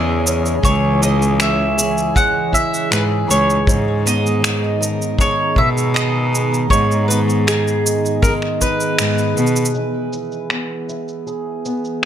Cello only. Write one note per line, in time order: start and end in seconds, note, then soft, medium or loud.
0.00 0.55 E2 medium
0.63 2.06 C#2 loud
2.90 3.18 G#2 medium
3.28 3.56 C#2 medium
3.67 5.10 G#2 medium
5.56 6.62 B2 medium
6.70 8.14 G#2 loud
8.99 9.26 G#2 medium
9.37 9.64 B2 medium